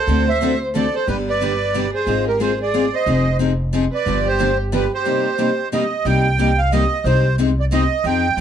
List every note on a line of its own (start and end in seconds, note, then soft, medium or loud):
0.00 0.25 A4 medium
0.00 0.29 C5 medium
0.07 0.87 D2 medium
0.07 0.28 D3 medium
0.07 0.28 A3 medium
0.07 0.28 C4 medium
0.07 0.29 F#4 medium
0.07 0.29 A4 medium
0.28 0.59 C5 medium
0.28 0.59 E5 loud
0.41 0.52 D3 medium
0.41 0.52 A3 medium
0.41 0.52 C4 medium
0.41 0.52 F#4 medium
0.41 0.52 A4 medium
0.74 0.85 D3 medium
0.74 0.85 A3 medium
0.74 0.85 C4 medium
0.74 0.85 F#4 medium
0.74 0.93 A4 medium
0.74 0.85 A4 medium
0.74 0.95 D5 medium
0.95 1.07 A4 medium
0.95 1.08 C5 medium
1.07 1.87 G1 medium
1.07 1.27 D3 medium
1.07 1.28 G3 medium
1.07 1.28 B3 medium
1.07 1.28 D4 medium
1.07 1.16 G4 medium
1.07 1.28 G4 medium
1.07 1.17 B4 medium
1.28 1.90 B4 medium
1.28 1.91 D5 medium
1.41 1.52 D3 medium
1.41 1.52 G3 medium
1.41 1.52 B3 medium
1.41 1.52 D4 medium
1.41 1.52 G4 medium
1.74 1.85 D3 medium
1.74 1.85 G3 medium
1.74 1.85 B3 medium
1.74 1.85 D4 medium
1.74 1.85 G4 medium
1.94 2.25 G#4 medium
1.94 2.25 C5 medium
2.07 2.86 G#1 medium
2.07 2.27 G#3 medium
2.07 2.27 C4 medium
2.07 2.27 F4 medium
2.07 2.28 G#4 medium
2.27 2.39 G4 medium
2.27 2.39 A#4 medium
2.40 2.51 G#3 medium
2.40 2.51 C4 medium
2.40 2.51 F4 medium
2.40 2.59 G#4 medium
2.40 2.51 G#4 medium
2.40 2.59 C5 medium
2.61 2.91 G#4 medium
2.61 2.95 D5 medium
2.74 2.84 G#3 medium
2.74 2.84 C4 medium
2.74 2.85 F4 medium
2.74 2.85 G#4 medium
2.94 3.36 C5 medium
2.94 3.37 D#5 medium
3.06 3.86 F1 medium
3.06 3.27 F3 medium
3.06 3.27 C4 medium
3.06 3.27 D#4 medium
3.06 3.27 G#4 medium
3.39 3.50 F3 medium
3.39 3.50 C4 medium
3.39 3.51 D#4 medium
3.39 3.51 G#4 medium
3.73 3.84 F3 medium
3.73 3.84 C4 medium
3.73 3.84 D#4 medium
3.73 3.84 G#4 medium
3.93 4.24 B4 medium
3.93 4.28 D5 medium
4.06 4.86 G1 medium
4.06 4.27 D3 medium
4.06 4.27 F3 medium
4.06 4.27 B3 medium
4.06 4.27 D4 medium
4.06 4.27 G4 medium
4.28 4.58 G4 medium
4.28 4.58 C5 medium
4.39 4.50 D3 medium
4.39 4.50 F3 medium
4.39 4.50 B3 medium
4.39 4.50 D4 medium
4.39 4.50 G4 medium
4.72 4.83 D3 medium
4.72 4.83 F3 medium
4.72 4.83 B3 medium
4.72 4.83 D4 medium
4.72 4.84 G4 medium
4.72 4.92 G4 medium
4.72 4.92 B4 medium
4.94 5.69 G4 medium
4.94 5.69 C5 medium
5.05 5.26 C3 medium
5.05 5.26 G3 medium
5.05 5.26 A#3 medium
5.05 5.26 D#4 medium
5.05 5.26 G4 medium
5.38 5.49 C3 medium
5.38 5.49 G3 medium
5.38 5.50 A#3 medium
5.38 5.50 D#4 medium
5.38 5.50 G4 medium
5.72 5.83 C3 medium
5.72 5.83 G3 medium
5.72 5.83 A#3 medium
5.72 5.83 D#4 medium
5.72 5.83 G4 medium
5.72 6.07 D#5 medium
6.05 6.85 C2 medium
6.05 6.26 C3 medium
6.05 6.26 G3 medium
6.05 6.26 A#3 medium
6.05 6.26 D#4 medium
6.05 6.26 G4 medium
6.05 6.60 G5 loud
6.38 6.49 C3 medium
6.38 6.50 G3 medium
6.38 6.50 A#3 medium
6.38 6.50 D#4 medium
6.38 6.50 G4 medium
6.58 6.72 F5 loud
6.72 6.83 C3 medium
6.72 6.83 G3 medium
6.72 6.83 A#3 medium
6.72 6.83 D#4 medium
6.72 6.83 G4 medium
6.72 7.06 D#5 medium
7.04 7.84 C2 medium
7.04 7.25 C3 medium
7.04 7.26 G#3 medium
7.04 7.26 C4 medium
7.04 7.26 D#4 medium
7.04 7.26 G4 medium
7.04 7.36 C5 medium
7.39 7.49 C3 medium
7.39 7.49 G#3 medium
7.39 7.49 C4 medium
7.39 7.50 D#4 medium
7.39 7.50 G4 medium
7.60 7.65 D5 medium
7.72 7.82 C3 medium
7.72 7.82 G#3 medium
7.72 7.82 C4 medium
7.72 7.83 D#4 medium
7.72 7.83 G4 medium
7.72 8.05 D#5 medium
8.04 8.30 F2 medium
8.04 8.25 F3 medium
8.04 8.26 C4 medium
8.04 8.26 D#4 medium
8.04 8.26 G#4 medium
8.04 8.40 G5 loud
8.37 8.40 D#2 medium